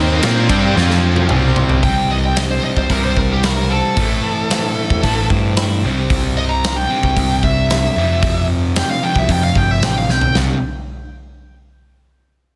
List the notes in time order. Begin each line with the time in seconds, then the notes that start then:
Already playing: D#2 D#3 A#3 C4 D#4 A#4 C5 A#5 D#6
0.23 A#2 A#3 E4 F4 A#4 C5 G5 C6, snare, ride
0.49 G2 G3 D4 G4, kick, ride
0.75 F2 F3 C4 F4 F5, snare
0.90 snare
1.16 high tom
1.29 C2 C3 G3 C4 E4 C5 G5 C6, mid tom
1.56 floor tom
1.69 floor tom
1.82 C2 C3 G3 C4 G5, kick, open hi-hat
2.10 E3 D#5
2.25 G5
2.36 C4 D#5, snare, open hi-hat
2.51 C5
2.64 G3 D#5
2.77 C2 C5, kick
2.89 C2 C3 E3 G3 C4 A#4, kick, open hi-hat
3.05 C5
3.17 C2 C4 A#4, kick
3.33 G4
3.43 E4 A#4, snare, open hi-hat
3.71 C4 A4
3.96 A1 A2 E3 A3, kick, open hi-hat
4.23 E3
4.50 C4, snare, open hi-hat
4.77 A3
4.90 E2, kick
5.03 A1 A2 E3 A3, kick, open hi-hat
5.30 G2 C4, kick
5.56 E4, snare, open hi-hat
5.83 C2 C3 G3 C4
6.10 C2, kick, open hi-hat
6.37 D#5
6.49 A#5
6.64 snare, open hi-hat
6.76 G5
6.90 C3 G3 C4
7.03 C2, kick
7.17 C2, kick, open hi-hat
7.43 C2 E5, kick
7.70 snare, open hi-hat
7.96 F2 C3 F3
8.23 kick, open hi-hat
8.76 G5, snare, open hi-hat
8.90 F5
9.03 F2 C3 F3 G5
9.16 C2 E5, kick
9.29 F2 G5, kick, open hi-hat
9.44 F5
9.55 G1 G5, kick
9.71 E5
9.81 A1 G5, snare, open hi-hat
9.98 F5
10.09 B1 G5, snare
10.21 floor tom
10.35 C2 C3 G3 C4, snare